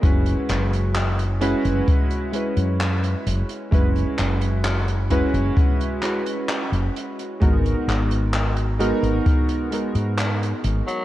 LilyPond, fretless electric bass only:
\new Staff \with { instrumentName = "Fretless electric bass" } { \clef bass \time 4/4 \key fis \mixolydian \tempo 4 = 65 fis,,16 r16 fis,,4 r16 fis,,16 r8. fis,8 r16 fis,,16 r16 | fis,,16 r16 fis,,4 r16 fis,,16 r4 r16 fis,,16 r8 | gis,,16 r16 gis,,4 r16 gis,,16 r8. gis,8 r16 gis,,16 r16 | }